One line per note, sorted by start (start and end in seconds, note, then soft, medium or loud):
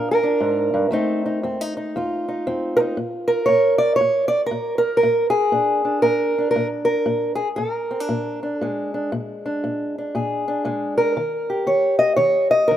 0.00 0.39 A#2 medium
0.00 0.22 D4 soft
0.11 0.95 A#4 medium
0.23 0.91 D4 soft
0.40 0.73 G#2 medium
0.74 0.90 G2 medium
0.91 1.39 F2 medium
0.91 2.94 A3 medium
0.91 1.42 C4 medium
0.91 1.25 D#4 medium
1.26 1.43 D#4 soft
1.43 1.91 F2 medium
1.43 1.61 C4 soft
1.61 1.76 D#4 soft
1.77 2.27 D#4 soft
1.96 2.43 F2 medium
1.96 3.45 F4 medium
2.29 2.76 D#4 soft
2.47 2.94 F2 medium
2.47 2.95 C4 medium
2.77 2.96 D#4 soft
2.77 2.80 A#4 loud
2.97 3.44 A#2 medium
3.28 3.98 A#4 medium
3.46 3.95 A#2 medium
3.46 3.78 C#5 medium
3.78 3.95 D5 loud
3.96 4.28 C#5 medium
4.01 4.47 A#2 medium
4.28 4.40 D5 loud
4.46 4.77 A#4 medium
4.51 4.98 A#2 medium
4.78 4.96 A#4 medium
4.97 5.30 A#4 medium
5.03 5.50 A#2 medium
5.30 6.02 G#4 medium
5.52 6.00 A#2 medium
5.52 5.84 D4 soft
5.85 6.38 D4 soft
6.02 6.51 A#2 medium
6.02 6.50 A#4 medium
6.38 7.38 D4 soft
6.51 6.67 A#4 medium
6.56 7.03 A#2 medium
6.85 7.35 A#4 medium
7.06 7.53 A#2 medium
7.35 7.48 G#4 medium
7.56 8.05 A#2 medium
7.56 8.64 A#4 medium
7.91 8.00 C4 soft
8.00 8.41 D4 soft
8.09 8.56 A#2 medium
8.43 8.93 D4 soft
8.61 9.08 A#2 medium
8.61 10.64 G#3 soft
8.61 9.11 G#4 medium
8.94 9.10 D4 soft
9.12 9.59 A#2 medium
9.46 9.96 D4 soft
9.64 10.11 A#2 medium
9.98 10.47 D4 soft
10.15 10.62 A#2 medium
10.15 10.97 G#4 soft
10.48 11.15 D4 soft
10.65 11.12 A#2 medium
10.65 11.16 G#3 soft
10.98 11.67 A#4 medium
11.17 11.64 D#3 medium
11.50 12.67 G4 soft
11.67 12.15 D#3 medium
11.67 11.98 C#5 medium
11.99 12.16 D#5 loud
12.16 12.66 D#3 medium
12.16 12.50 C#5 medium
12.51 12.77 D#5 medium
12.68 12.77 D#3 medium
12.68 12.77 A#4 medium